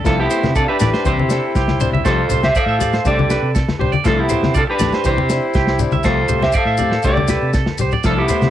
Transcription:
0.05 C2 F3 A3 D4 E4 F4 A4, kick, snare, maracas
0.19 B3 E4 G4
0.30 A3 E4 C5, maracas
0.43 C3, snare, high conga, maracas
0.56 D4 F4 A4 D5, kick, maracas
0.68 D4 G4 B4 E5
0.80 A1 A3 E4 D5, snare, low conga, maracas
0.94 C5, snare, maracas
1.05 C2 E3 C4 D4 E4 G4 C5, kick, maracas
1.18 C3, high conga
1.29 C4 D4 G4 A4, snare, maracas
1.55 C2 G4, kick, snare, maracas
1.68 snare, high conga
1.80 C4 D4 G4 C5, low conga, maracas
1.92 C2 E5, high conga
2.05 C2 F3 A3 C4 F4 G4 A4 C5, kick, snare, maracas
2.29 C2 C4 G4 C5, low conga, maracas
2.43 G4 C5 E5, snare, high conga, maracas
2.55 A4 C5 D5 F5, kick, maracas
2.66 A2 E5
2.79 A3 G4 D5, low conga, maracas
2.93 C5, snare, maracas
3.05 C2 A3 D4 G4 A4 D5, kick, maracas
3.19 high conga
3.29 D4 G4 B4, snare, maracas
3.43 C3
3.55 A4, kick, snare, maracas
3.68 snare, high conga
3.79 C2 D4 G4 C5, low conga
3.92 D5, high conga, maracas
4.04 C2 F3 A3 D4 E4 F4 A4, kick, snare, maracas
4.19 B3 E4 G4
4.29 A3 E4 C5, low conga, maracas
4.42 C3, snare, high conga
4.54 D4 F4 A4 D5, kick, maracas
4.67 D4 G4 B4, muted clean electric guitar stroke
4.79 A1 A3 E4 D5, snare, low conga, maracas
4.92 C5, snare, maracas
5.04 C2 E3 C4 D4 E4 G4 C5, kick, maracas
5.17 C3, high conga
5.29 C4 D4, muted clean electric guitar stroke, snare, maracas
5.54 C2 G4, kick, snare, maracas
5.67 snare
5.79 C4 D4 G4, low conga, maracas
5.91 C2 E5, high conga, maracas
6.03 C2 F3 A3 C4 F4 G4 A4 C5, muted clean electric guitar stroke, kick, snare, maracas
6.28 C2 A3 C4 G4 C5, low conga, maracas
6.42 G4 C5 E5, snare, high conga
6.52 C5 D5 F5, kick, maracas
6.57 A4
6.66 A2 E5
6.77 A3 C4 G4 D5, low conga, maracas
6.92 A4, snare
7.03 C2 A3 D4 G4 A4 D5, kick, maracas
7.17 high conga
7.28 G4 B4, muted steel-string acoustic guitar stroke, snare, low conga, maracas
7.42 C3
7.53 A4, kick, snare, maracas
7.66 snare, high conga
7.78 C2 G4 C5, muted steel-string acoustic guitar stroke, low conga, maracas
7.92 D5, low conga, maracas
8.03 C2 F3 A3 E4 F4 A4, kick, snare, maracas
8.08 D4
8.18 B3 E4 G4
8.28 A3 E4 C5, low conga, maracas
8.41 C3, snare, high conga, maracas

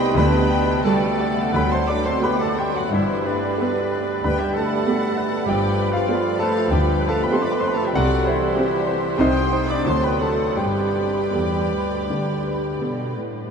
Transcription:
Already playing: C2 G3 B3 F#4 G4 B4 C5 D#5 G5 B5 C6 D#6
0.15 D2 D3 B3 B4 G5 A5 B5
0.19 B4 D5
0.50 G4
0.84 G3 A3 F#4 G4 A4 D5 G5 A5
1.19 G4 F#5
1.52 D2 D3 F#3 B3 B4 G5 B5
1.56 B4 B5
1.72 C4 C5 A5 C6
1.87 D4 A4 D5 B5 D6
2.05 C4 C5 A5 C6
2.21 A3 B3 F#4 G4 B4 G5 B5 D6
2.25 B4
2.38 A3 A4 F#5 A5
2.42 A4
2.56 G3 G4 A4 E5 G5 C6
2.61 G4
2.73 F#3 F#4 D5 F#5
2.78 F#4
2.89 G2 E3 C5 E5 B5
2.93 G1 G3 E4 B4 E5
3.24 D3 D4 B4 D5
3.58 B3 G4 A4 B4
3.91 B4
4.23 D2 D3 B3 B4 G5 B5
4.38 G3 G4 E5 G5
4.42 G4
4.54 A3 A4 B4 F#5 A5
4.58 A4
4.87 B3 G4 A4 E5
5.17 B4 D5
5.45 G1 G2 F3 G3 G4 B4 D5 G5
5.50 G4
5.79 B4
5.91 F3 F4 D5 F5
5.96 F4
6.08 B3 G4 A4 D5
6.39 A3 A4 B4 C5 F5 A5
6.70 D2 D3 G3 G4 B4 D5 G5
7.00 B4
7.06 A3 A4 F5 A5
7.21 B3 B4 G5 B5
7.32 B3 C4 G4 A4 C5 A5 C6
7.42 D4 D5 B5 D6
7.51 B3 B4 G5 B5
7.59 C4 C5 A5 C6
7.63 B4 G5
7.68 B3 B5
7.74 A3 A4 F5 A5
7.83 G4 E5 G5
7.88 G3
7.94 C2 C3 F#3 G3 F#4 A4 D5 F#5 C6
8.24 E4 C5 E5
8.29 E3 E4
8.56 C4 G4 B4
8.87 C5
9.18 C2 C3 C4 D#4 G4 C5 G5 C6 D#6
9.51 D#4 C5
9.67 D4 D5 B5 D6
9.72 D5
9.84 D2 D3 F#3 C4 F#4 A4 C5 A5 C6
9.88 C5 C6
10.01 B4 G5 B5
10.06 B3 B4
10.21 A3 D4 A4 C5 F#5 A5
10.57 G1 G2 G3 G4 B4 D5 G5 B5
10.95 B4
11.32 E2 B3 G4 A4
11.72 D2 B4
12.10 D2 D3
12.46 B4
12.82 B2 B3 G4 A4
13.14 A2 B4

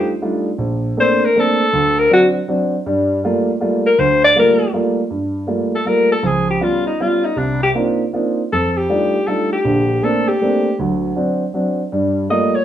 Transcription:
Already playing: G4
0.22 G3 A3 D4 D#4 F4
0.58 A#1
0.97 A3 A#3 C4 D4 C5
1.26 A#4
1.36 A3 A#3 C4 D4
1.40 A4
1.73 D2
1.99 A#4
2.10 F#3 C4 D4 F#4
2.48 F#3 C4 D4
2.86 G2 G3
3.24 G3 A3 A#3 F4
3.60 G3 A3 A#3 F4
3.86 A#4
3.98 D2 C5
4.24 D5
4.35 G3 A3 A#3 F4
4.40 A#4
4.73 G3 A3 A#3 F4
5.10 G2
5.47 G3 A3 A#3 F4
5.75 A4
5.85 G3 A3 A#3 F4 A#4
6.12 A4
6.23 C#2 F3 G#4
6.50 G4
6.60 G3 B3 C#4 F4
6.87 D#4
7.00 G3 B3 C#4 F4
7.24 D#4
7.36 C2 D4
7.63 G4
7.75 A#3 C4 D4 D#4 F4
8.13 A#3 C4 D4 D#4 F4
8.52 F2 A4
8.77 G4
8.89 G3 A3 D4 D#4 F4
9.27 G3 A3 D4 D#4 F4 A4
9.53 G4
9.64 A#1 D3
10.02 A3 A#3 C4 D4 A4
10.28 G4
10.41 A3 A#3 C4 D4
10.79 D2 F#3
11.16 F#3 C4 D4
11.54 F#3 C4 D4
11.92 G2 G3
12.29 G3 A3 A#3 F4 D#5
12.55 C#5

